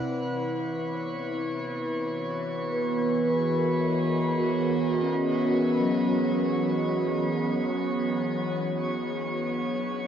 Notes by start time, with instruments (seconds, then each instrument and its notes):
Already playing: ambient pad E4 B4, synth texture F#5 F#6
0.05 ambient pad E3, synth texture C#5 C#6
0.70 ambient pad B3
1.36 ambient pad F#4
2.31 ambient pad G#4
2.73 vibraphone B4
3.23 ambient pad D#5
3.56 vibraphone A#4
4.38 vibraphone F#4
5.02 vibraphone C#4
5.79 vibraphone F#3
9.20 ambient pad D4